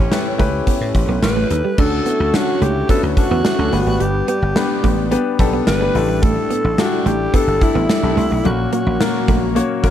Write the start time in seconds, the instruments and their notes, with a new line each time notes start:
Already playing: grand piano A2 C#4 E4 G4 A4, analog synth pad A3 C#4 G4, alto saxophone C#4
0.11 grand piano C#4 E4 G4 B4, snare, closed hi-hat
0.38 slap bass C#2, clean electric guitar A3, grand piano C#4 E4 G4 B4, kick, closed hi-hat
0.67 clean electric guitar B3, kick, closed hi-hat
0.81 slap bass A2
0.95 slap bass A1, muted clean electric guitar stroke, kick, closed hi-hat
1.09 slap bass B1, clean electric guitar B3
1.23 slap bass A1, alto saxophone B4, snare, closed hi-hat
1.37 clean electric guitar A3
1.50 slap bass D#2, muted clean electric guitar stroke, closed hi-hat
1.65 clean electric guitar G3
1.78 slap bass D2, analog synth pad D3 A3 E4 F#4 C#5, grand piano D3 C#4 D4 F#4 A4, clean electric guitar D4, alto saxophone A4, kick, crash
1.92 muted clean electric guitar stroke
2.06 clean electric guitar B3, closed hi-hat
2.20 slap bass D2
2.33 grand piano C#4 D4 F#4 A4, alto saxophone F#4, snare, closed hi-hat
2.61 slap bass C#2, clean electric guitar A3, alto saxophone G4, closed hi-hat
2.89 clean electric guitar B3, grand piano C#4 D4 F#4 B4, alto saxophone A4, kick, closed hi-hat
3.03 slap bass D2
3.17 grand piano C#4 D4 F#4 A4, alto saxophone F#4, muted clean electric guitar stroke, kick, closed hi-hat
3.31 slap bass E2, clean electric guitar B3
3.45 muted clean electric guitar stroke, snare, closed hi-hat
3.58 slap bass D2, grand piano C#4 D4 F#4 A4
3.72 slap bass G1, grand piano G2 B3 D4 G4 B4, analog synth pad G3 B3 D4, clean electric guitar A3, open hi-hat
3.86 slap bass G#1, clean electric guitar A3
4.00 slap bass G1, clean electric guitar G3, alto saxophone G4, closed hi-hat
4.15 muted clean electric guitar stroke
4.28 clean electric guitar B3, alto saxophone G4, closed hi-hat
4.42 slap bass G1
4.55 grand piano B3 D4 G4 B4, snare, closed hi-hat
4.84 slap bass A1, clean electric guitar A3, kick, closed hi-hat
5.11 grand piano B3 D4 G4 B4, clean electric guitar B3, closed hi-hat
5.39 slap bass B1, grand piano B3 D4 G4 A4, muted clean electric guitar stroke, kick, closed hi-hat
5.53 clean electric guitar B3
5.67 slap bass G1, alto saxophone B4, snare, closed hi-hat
5.81 clean electric guitar A3, grand piano B3 D4 G4 B4
5.95 slap bass A1, grand piano A2 D4 E4 G4 A4, analog synth pad A3, muted clean electric guitar stroke, open hi-hat
6.09 clean electric guitar G3
6.23 clean electric guitar A3, alto saxophone A4, kick, closed hi-hat
6.37 muted clean electric guitar stroke
6.50 clean electric guitar B3, closed hi-hat
6.64 slap bass A1
6.78 grand piano D4 E4 G4 A4, alto saxophone F#4, snare, closed hi-hat
7.06 slap bass A1, clean electric guitar A3, alto saxophone G4, closed hi-hat
7.33 clean electric guitar B3, grand piano D4 E4 G4 A4, alto saxophone A4, kick, closed hi-hat
7.47 slap bass G1
7.61 grand piano D4 E4 G4 A4, alto saxophone E4, muted clean electric guitar stroke, kick, closed hi-hat
7.75 slap bass A1, clean electric guitar B3
7.89 muted clean electric guitar stroke, snare, closed hi-hat
8.03 slap bass B1, grand piano D4 E4 G4 A4
8.17 slap bass C2, clean electric guitar A3, open hi-hat
8.31 slap bass B1, clean electric guitar A3
8.44 slap bass A#1, grand piano A#2 A#3 C#4 F#4 A#4, analog synth pad F#3 A#3 C#5, clean electric guitar F#3, alto saxophone F#4, closed hi-hat
8.59 muted clean electric guitar stroke
8.73 clean electric guitar A#3, alto saxophone F#4, closed hi-hat
8.87 slap bass A#1
9.00 grand piano A#3 C#4 F#4 A#4, snare, closed hi-hat
9.28 slap bass A#1, clean electric guitar A3, kick, closed hi-hat
9.55 grand piano A#3 C#4 F#4 C#5, clean electric guitar A#3, closed hi-hat
9.83 slap bass A1, grand piano A#3 C#4 F#4 A#4, muted clean electric guitar stroke, kick, closed hi-hat